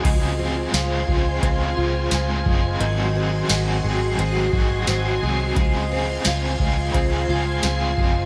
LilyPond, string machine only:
\new Staff \with { instrumentName = "String machine" } { \time 4/4 \key des \major \tempo 4 = 87 << { <aes'' c'''>1~ | <aes'' c'''>1~ | <aes'' c'''>1 | } \\ { <f' c''>1 | <ges' ees''>1 | <f' c''>1 | } >> }